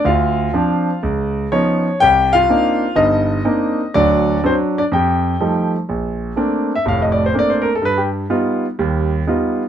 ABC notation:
X:1
M:4/4
L:1/16
Q:"Swing" 1/4=124
K:Dphr
V:1 name="Grand piano"
[Ff]8 z4 ^c4 | [Gg]2 [Ff]6 [Ee]8 | [Dd]4 [Cc]2 [Dd]2 [Gg]6 z2 | [K:Bb] z6 z =e f _e d c d c B A |
=B G z12 z2 |]
V:2 name="Grand piano"
D,,4 [F,CD]2 z2 ^C,,4 [^E,=B,^C^D]2 z2 | C,,4 [B,CDE]2 z2 [G,,,G,,]4 [B,CDE]2 z2 | [D,,^F,]4 [F,CD]2 z2 =F,,4 [=F,G,A,E]2 z2 | [K:Bb] B,,,4 [A,B,CD]2 z2 [F,,,A,,]4 [A,B,CD]2 z2 |
G,,4 [G,=B,^DF]2 z2 [^D,,G,]4 [G,B,DF]2 z2 |]